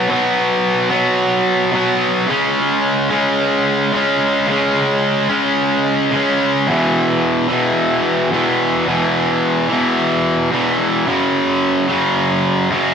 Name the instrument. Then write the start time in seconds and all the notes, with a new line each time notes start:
overdriven electric guitar
0.08 B2 F#3 B3
0.90 B2 F#3 B3
1.72 B2 F#3 B3
2.27 C#3 G#3 C#4
3.10 C#3 G#3 C#4
3.93 C#3 G#3 C#4
4.47 C#3 G#3
4.51 C#4
5.29 C#3 G#3 C#4
6.12 C#3 G#3
6.16 C#4
6.68 E2 B2 E3
7.49 B2 E3
7.53 E2
8.31 E2 B2 E3
8.87 E2 B2 E3
9.69 E2 B2 E3
10.51 E2 B2 E3
11.06 F#2 C#3 F#3
11.88 F#2 C#3 F#3
12.70 F#2 C#3 F#3